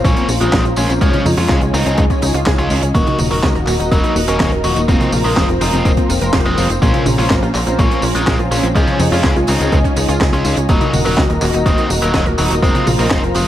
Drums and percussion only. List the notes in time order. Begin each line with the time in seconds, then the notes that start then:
0.05 kick, closed hi-hat, tambourine
0.16 closed hi-hat, tambourine
0.29 open hi-hat, tambourine
0.41 closed hi-hat, tambourine
0.53 kick, snare, clap, closed hi-hat, tambourine
0.65 closed hi-hat, tambourine
0.76 open hi-hat, tambourine
0.90 closed hi-hat, tambourine
1.01 kick, closed hi-hat, tambourine
1.13 closed hi-hat, high tom, tambourine
1.25 open hi-hat, high tom, tambourine
1.37 open hi-hat, tambourine
1.49 kick, snare, clap, tambourine
1.61 closed hi-hat, tambourine
1.74 open hi-hat, tambourine
1.86 closed hi-hat, tambourine
1.97 kick, closed hi-hat, tambourine
2.10 kick, closed hi-hat, tambourine
2.22 open hi-hat, tambourine
2.34 closed hi-hat, tambourine
2.46 kick, snare, clap, closed hi-hat, tambourine
2.58 closed hi-hat, tambourine
2.70 open hi-hat, tambourine
2.83 closed hi-hat, tambourine
2.95 kick, closed hi-hat, tambourine
3.07 closed hi-hat, high tom, tambourine
3.19 open hi-hat, high tom, tambourine
3.31 open hi-hat, tambourine
3.43 kick, snare, clap, tambourine
3.55 closed hi-hat, tambourine
3.67 clap, open hi-hat, tambourine
3.80 closed hi-hat, tambourine
3.92 kick, closed hi-hat, tambourine
4.04 closed hi-hat, tambourine
4.16 open hi-hat, tambourine
4.27 closed hi-hat, tambourine
4.40 kick, snare, clap, closed hi-hat, tambourine
4.52 closed hi-hat, tambourine
4.64 open hi-hat, tambourine
4.76 closed hi-hat, tambourine
4.88 kick, closed hi-hat, tambourine
5.01 closed hi-hat, high tom, tambourine
5.12 open hi-hat, high tom, tambourine
5.25 open hi-hat, tambourine
5.37 kick, snare, clap, tambourine
5.49 closed hi-hat, tambourine
5.61 open hi-hat, tambourine
5.73 closed hi-hat, tambourine
5.85 kick, closed hi-hat, tambourine
5.97 kick, closed hi-hat, tambourine
6.10 open hi-hat, tambourine
6.21 closed hi-hat, tambourine
6.33 kick, snare, clap, closed hi-hat, tambourine
6.45 closed hi-hat, tambourine
6.57 open hi-hat, tambourine
6.70 closed hi-hat, tambourine
6.82 kick, closed hi-hat, tambourine
6.94 closed hi-hat, high tom, tambourine
7.06 open hi-hat, high tom, tambourine
7.19 open hi-hat, tambourine
7.30 kick, snare, clap, closed hi-hat, tambourine
7.43 closed hi-hat, tambourine
7.55 clap, open hi-hat, tambourine
7.67 closed hi-hat, tambourine
7.79 kick, closed hi-hat, tambourine
7.91 closed hi-hat, tambourine
8.02 open hi-hat, tambourine
8.15 closed hi-hat, tambourine
8.27 kick, snare, clap, closed hi-hat, tambourine
8.39 closed hi-hat, tambourine
8.51 open hi-hat, tambourine
8.63 closed hi-hat, tambourine
8.75 kick, closed hi-hat, tambourine
8.88 closed hi-hat, high tom, tambourine
8.99 open hi-hat, high tom, tambourine
9.12 open hi-hat, tambourine
9.24 kick, snare, clap, tambourine
9.36 closed hi-hat, tambourine
9.47 open hi-hat, tambourine
9.60 closed hi-hat, tambourine
9.72 kick, closed hi-hat, tambourine
9.84 kick, closed hi-hat, tambourine
9.96 open hi-hat, tambourine
10.09 closed hi-hat, tambourine
10.21 kick, snare, clap, closed hi-hat, tambourine
10.33 closed hi-hat, tambourine
10.45 open hi-hat, tambourine
10.56 closed hi-hat, tambourine
10.69 kick, closed hi-hat, tambourine
10.81 closed hi-hat, high tom, tambourine
10.93 open hi-hat, high tom, tambourine
11.05 open hi-hat, tambourine
11.17 kick, snare, clap, closed hi-hat, tambourine
11.30 closed hi-hat, tambourine
11.41 clap, open hi-hat, tambourine
11.53 closed hi-hat, tambourine
11.66 kick, closed hi-hat, tambourine
11.78 closed hi-hat, tambourine
11.90 open hi-hat, tambourine
12.02 closed hi-hat, tambourine
12.14 kick, snare, clap, closed hi-hat, tambourine
12.26 closed hi-hat, tambourine
12.38 open hi-hat, tambourine
12.51 closed hi-hat, tambourine
12.63 kick, closed hi-hat, tambourine
12.75 closed hi-hat, high tom, tambourine
12.87 open hi-hat, high tom, tambourine
12.99 open hi-hat, tambourine
13.10 kick, snare, clap, tambourine
13.23 closed hi-hat, tambourine
13.34 open hi-hat, tambourine